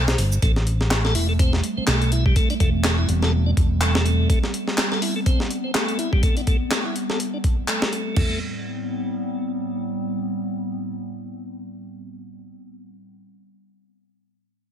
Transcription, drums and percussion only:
0.08 snare loud
0.08 shaker soft
0.18 closed hi-hat medium
0.18 open hi-hat medium
0.32 shaker medium
0.42 kick loud
0.42 closed hi-hat medium
0.56 snare soft
0.67 closed hi-hat medium
0.81 snare soft
0.91 snare loud
0.91 clap loud
0.91 closed hi-hat medium
1.05 snare soft
1.15 open hi-hat medium
1.39 kick loud
1.39 closed hi-hat medium
1.53 snare soft
1.64 closed hi-hat medium
1.87 snare loud
1.87 clap loud
1.87 closed hi-hat medium
2.02 closed hi-hat soft
2.12 closed hi-hat medium
2.26 kick medium
2.36 kick loud
2.36 closed hi-hat medium
2.50 closed hi-hat soft
2.60 kick medium
2.60 closed hi-hat medium
2.84 snare loud
2.84 clap loud
2.84 closed hi-hat medium
3.09 closed hi-hat medium
3.23 snare medium
3.57 kick medium
3.57 closed hi-hat medium
3.81 clap loud
3.81 closed hi-hat medium
3.95 snare loud
4.06 closed hi-hat medium
4.30 kick loud
4.30 closed hi-hat medium
4.44 snare soft
4.54 closed hi-hat medium
4.68 snare soft
4.78 snare loud
4.78 clap loud
4.78 closed hi-hat medium
4.92 snare soft
5.02 open hi-hat medium
5.26 kick loud
5.26 closed hi-hat medium
5.40 snare soft
5.51 closed hi-hat medium
5.75 snare loud
5.75 clap loud
5.75 closed hi-hat medium
5.88 closed hi-hat soft
5.99 closed hi-hat medium
6.13 kick medium
6.23 kick loud
6.23 closed hi-hat medium
6.37 closed hi-hat soft
6.47 kick medium
6.47 closed hi-hat medium
6.71 snare loud
6.71 clap loud
6.71 closed hi-hat medium
6.96 closed hi-hat medium
7.10 snare medium
7.20 closed hi-hat medium
7.44 kick medium
7.44 closed hi-hat medium
7.68 clap loud
7.68 closed hi-hat medium
7.82 snare loud
7.93 closed hi-hat medium
8.16 kick medium
8.16 floor tom loud
8.16 crash medium

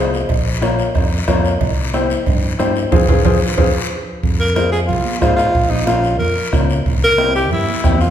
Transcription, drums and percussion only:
0.14 short guiro medium
0.29 bombo low medium
0.29 cowbell medium
0.29 high conga soft
0.29 long guiro medium
0.62 bombo rim medium
0.62 cowbell medium
0.62 high conga medium
0.62 short guiro medium
0.79 short guiro medium
0.95 bombo low medium
0.95 bombo rim medium
0.95 cowbell medium
0.95 high conga soft
0.95 low conga medium
0.95 long guiro medium
1.28 bombo low medium
1.28 bombo rim medium
1.28 cowbell medium
1.28 high conga medium
1.28 low conga medium
1.28 short guiro medium
1.45 short guiro medium
1.61 bombo low medium
1.61 cowbell medium
1.61 high conga soft
1.61 low conga medium
1.61 long guiro medium
1.94 bombo rim medium
1.94 cowbell medium
1.94 high conga medium
1.94 short guiro medium
2.10 short guiro medium
2.26 bombo low medium
2.26 cowbell medium
2.26 high conga soft
2.26 low conga medium
2.26 long guiro medium
2.59 bombo rim medium
2.59 cowbell medium
2.59 high conga medium
2.59 low timbale medium
2.59 short guiro medium
2.76 short guiro medium
2.92 bombo low loud
2.92 low conga loud
2.92 high timbale medium
2.92 long guiro loud
3.08 bombo low loud
3.08 low conga loud
3.08 high timbale loud
3.08 long guiro medium
3.25 bombo low medium
3.25 low conga loud
3.25 high timbale medium
3.25 long guiro loud
3.58 bombo low loud
3.58 low conga medium
3.58 high timbale medium
3.58 long guiro loud
4.23 bombo low medium
4.23 high conga soft
4.23 low conga medium
4.23 long guiro medium
4.56 bombo rim medium
4.56 high conga medium
4.56 short guiro medium
4.73 short guiro medium
4.89 high conga soft
4.89 low conga medium
4.89 long guiro medium
5.05 high conga medium
5.21 bombo low medium
5.21 bombo rim medium
5.21 high conga medium
5.21 low conga medium
5.21 short guiro medium
5.38 bombo rim medium
5.38 short guiro medium
5.54 bombo low medium
5.54 high conga soft
5.54 long guiro medium
5.71 high conga medium
5.87 bombo rim medium
5.87 high conga loud
5.87 short guiro medium
6.04 short guiro medium
6.20 high conga soft
6.20 low conga medium
6.20 long guiro medium
6.53 bombo low medium
6.53 bombo rim medium
6.53 high conga medium
6.53 low conga medium
6.53 short guiro medium
6.70 short guiro medium
6.86 bombo low medium
6.86 high conga soft
6.86 long guiro medium
7.18 bombo rim medium
7.18 high conga medium
7.18 short guiro medium
7.35 short guiro medium
7.51 high conga soft
7.51 low conga medium
7.51 long guiro medium
7.68 high conga medium
7.84 bombo low medium
7.84 bombo rim medium
7.84 high conga medium
7.84 low conga medium
7.84 short guiro medium
8.01 short guiro medium

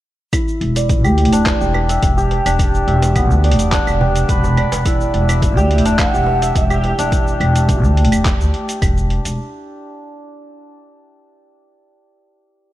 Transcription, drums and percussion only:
0.33 kick medium
0.33 closed hi-hat medium
0.33 cabasa medium
0.33 claves medium
0.48 cabasa soft
0.61 closed hi-hat soft
0.76 closed hi-hat soft
0.76 cabasa medium
0.89 kick loud
0.89 closed hi-hat medium
0.89 cabasa soft
1.04 cabasa soft
1.04 claves medium
1.18 closed hi-hat soft
1.25 closed hi-hat soft
1.33 closed hi-hat soft
1.33 cabasa medium
1.46 kick loud
1.46 clap medium
1.46 closed hi-hat soft
1.46 darbuka ka medium
1.46 cabasa soft
1.61 cabasa soft
1.74 darbuka ka medium
1.74 claves medium
1.89 closed hi-hat soft
1.89 cabasa medium
2.03 kick loud
2.03 closed hi-hat medium
2.03 cabasa medium
2.18 cabasa soft
2.31 closed hi-hat soft
2.31 darbuka ka soft
2.46 closed hi-hat soft
2.46 cabasa medium
2.46 claves medium
2.59 kick medium
2.59 closed hi-hat medium
2.59 cabasa medium
2.75 cabasa soft
2.88 closed hi-hat soft
3.02 closed hi-hat soft
3.02 darbuka ka soft
3.02 cabasa medium
3.16 kick loud
3.16 closed hi-hat medium
3.16 cabasa medium
3.16 claves medium
3.31 cabasa soft
3.44 closed hi-hat soft
3.52 closed hi-hat medium
3.59 closed hi-hat soft
3.59 cabasa medium
3.72 kick loud
3.72 clap medium
3.72 closed hi-hat soft
3.72 cabasa medium
3.87 darbuka ka soft
3.87 cabasa soft
3.87 claves medium
4.01 darbuka ka medium
4.01 darbuka dum medium
4.16 closed hi-hat soft
4.16 cabasa medium
4.29 kick loud
4.29 closed hi-hat medium
4.29 cabasa medium
4.44 darbuka ka medium
4.44 darbuka dum medium
4.44 cabasa soft
4.57 closed hi-hat soft
4.57 claves medium
4.72 closed hi-hat soft
4.72 darbuka tek medium
4.72 cabasa medium
4.86 kick loud
4.86 closed hi-hat medium
4.86 cabasa medium
5.01 cabasa soft
5.14 closed hi-hat soft
5.29 closed hi-hat soft
5.29 cabasa medium
5.29 claves medium
5.42 kick loud
5.42 closed hi-hat soft
5.42 cabasa medium
5.58 cabasa soft
5.71 closed hi-hat soft
5.78 closed hi-hat soft
5.86 closed hi-hat soft
5.86 cabasa medium
5.99 kick loud
5.99 clap medium
5.99 closed hi-hat soft
5.99 darbuka ka medium
5.99 cabasa medium
5.99 claves medium
6.14 cabasa soft
6.26 darbuka ka medium
6.42 closed hi-hat soft
6.42 cabasa medium
6.55 kick loud
6.55 closed hi-hat medium
6.55 cabasa medium
6.70 cabasa soft
6.70 claves medium
6.84 closed hi-hat soft
6.84 darbuka ka soft
6.99 closed hi-hat soft
6.99 cabasa medium
7.12 kick loud
7.12 closed hi-hat medium
7.12 cabasa medium
7.27 cabasa soft
7.41 closed hi-hat soft
7.41 claves medium
7.56 closed hi-hat soft
7.56 cabasa medium
7.69 kick loud
7.69 closed hi-hat soft
7.69 cabasa medium
7.84 cabasa soft
7.97 closed hi-hat soft
8.05 closed hi-hat soft
8.12 closed hi-hat soft
8.12 cabasa medium
8.12 claves medium
8.25 kick loud
8.25 clap medium
8.25 closed hi-hat soft
8.25 cabasa medium
8.41 cabasa soft
8.54 closed hi-hat soft
8.69 closed hi-hat soft
8.69 cabasa medium
8.82 kick loud
8.82 closed hi-hat medium
8.82 cabasa medium
8.82 claves medium
8.97 cabasa soft
9.10 closed hi-hat soft
9.25 closed hi-hat soft
9.25 cabasa medium

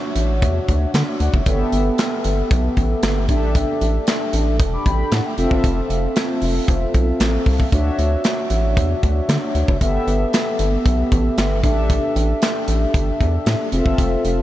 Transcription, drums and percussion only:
0.16 closed hi-hat medium
0.42 kick loud
0.42 closed hi-hat medium
0.69 kick medium
0.69 closed hi-hat medium
0.94 snare loud
0.94 clap medium
0.94 closed hi-hat medium
1.20 closed hi-hat medium
1.34 kick medium
1.46 kick loud
1.46 closed hi-hat medium
1.72 closed hi-hat medium
1.98 snare loud
1.98 clap medium
1.98 closed hi-hat medium
2.24 closed hi-hat medium
2.51 kick loud
2.51 closed hi-hat medium
2.77 kick medium
2.77 closed hi-hat medium
3.03 snare loud
3.03 clap medium
3.03 closed hi-hat medium
3.29 kick medium
3.29 closed hi-hat medium
3.55 kick loud
3.55 closed hi-hat medium
3.81 closed hi-hat medium
4.07 snare loud
4.07 clap medium
4.07 closed hi-hat medium
4.33 closed hi-hat medium
4.60 kick loud
4.60 closed hi-hat medium
4.86 kick medium
4.86 closed hi-hat medium
5.12 snare loud
5.12 clap medium
5.12 closed hi-hat medium
5.38 closed hi-hat medium
5.51 kick medium
5.64 kick loud
5.64 closed hi-hat medium
5.90 closed hi-hat medium
6.16 snare loud
6.16 clap medium
6.16 closed hi-hat medium
6.42 open hi-hat medium
6.68 kick loud
6.68 closed hi-hat medium
6.94 kick medium
6.94 closed hi-hat medium
7.20 snare loud
7.20 clap medium
7.20 closed hi-hat medium
7.46 kick medium
7.46 open hi-hat medium
7.60 kick medium
7.72 kick loud
7.72 closed hi-hat medium
7.99 closed hi-hat medium
8.24 snare loud
8.24 clap medium
8.24 closed hi-hat medium
8.50 closed hi-hat medium
8.77 kick loud
8.77 closed hi-hat medium
9.03 kick medium
9.03 closed hi-hat medium
9.29 snare loud
9.29 clap medium
9.29 closed hi-hat medium
9.55 closed hi-hat medium
9.68 kick loud
9.81 kick loud
9.81 closed hi-hat medium
10.08 closed hi-hat medium
10.33 snare loud
10.33 clap medium
10.33 closed hi-hat medium
10.59 closed hi-hat medium
10.86 kick loud
10.86 closed hi-hat medium
11.12 kick medium
11.12 closed hi-hat medium
11.38 snare loud
11.38 clap medium
11.38 closed hi-hat medium
11.63 kick medium
11.63 closed hi-hat medium
11.90 kick loud
11.90 closed hi-hat medium
12.16 closed hi-hat medium
12.42 snare loud
12.42 clap medium
12.42 closed hi-hat medium
12.68 closed hi-hat medium
12.94 kick loud
12.94 closed hi-hat medium
13.21 kick medium
13.21 closed hi-hat medium
13.46 snare loud
13.46 clap medium
13.46 closed hi-hat medium
13.72 closed hi-hat medium
13.86 kick medium
13.98 kick loud
13.98 closed hi-hat medium
14.25 closed hi-hat medium

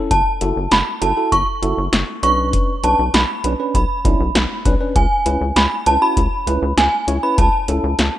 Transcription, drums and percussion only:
0.11 kick loud
0.11 closed hi-hat medium
0.41 closed hi-hat medium
0.71 snare loud
0.71 closed hi-hat medium
1.02 closed hi-hat medium
1.32 kick medium
1.32 closed hi-hat medium
1.63 closed hi-hat medium
1.93 snare loud
1.93 closed hi-hat medium
2.23 closed hi-hat medium
2.53 kick loud
2.53 closed hi-hat medium
2.84 closed hi-hat medium
3.14 snare loud
3.14 closed hi-hat medium
3.44 closed hi-hat medium
3.75 kick medium
3.75 closed hi-hat medium
4.05 kick loud
4.05 closed hi-hat medium
4.35 snare loud
4.35 closed hi-hat medium
4.65 kick loud
4.65 closed hi-hat medium
4.96 kick loud
4.96 closed hi-hat medium
5.26 closed hi-hat medium
5.56 snare loud
5.56 closed hi-hat medium
5.86 closed hi-hat medium
6.17 kick medium
6.17 closed hi-hat medium
6.47 closed hi-hat medium
6.78 snare loud
6.78 closed hi-hat medium
7.08 closed hi-hat medium
7.38 kick loud
7.38 closed hi-hat medium
7.68 closed hi-hat medium
7.99 snare loud
7.99 closed hi-hat medium

